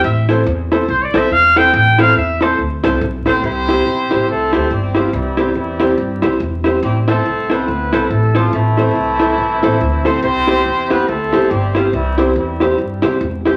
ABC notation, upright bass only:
X:1
M:4/4
L:1/8
Q:"Swing" 1/4=141
K:C
V:1 name="Upright bass" clef=bass
A,,,2 E,,2 C,, B,,, E,,,2 | A,,,2 E,,2 D,, C,, B,,, A,,, | C,,2 B,,, A,,, C,, D,, G,,,2 | C,,2 E,,2 G,, C,, E,,,2 |
A,,,2 C,,2 D,, C,, A,,,2 | A,,,2 C,,2 B,,, A,,, D,,2 | C,,2 E,,2 D,, C,, G,,,2 | C,,2 E,,2 G,, C,, E,,,2 |]